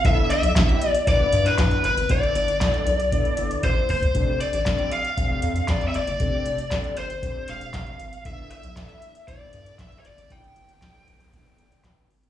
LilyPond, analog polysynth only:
\new Staff \with { instrumentName = "Analog polysynth" } { \time 4/4 \key g \mixolydian \tempo 4 = 117 <b d' e' a'>8. r16 <a b d' e' g'>8. r16 <b d' e' b'>4. r8 | <b d' e' a'>8. r16 <b d' e' a'>8. r16 <b d' e' a'>4. r8 | <c' d' g' a'>8. r16 <c' d' g' a'>8. r16 <c' d' g' a'>4. r8 | <c' d' g' a'>8. r16 <c' d' g' a'>8. r16 <c' d' g' a'>4. r8 |
<a b d' e' a'>8. r16 <b d' e' a'>8. r16 <b d' e' a'>4. r8 | <b d' e' a'>8. r16 <b d' e' a'>8. r16 <b d' e' a'>4. r8 | }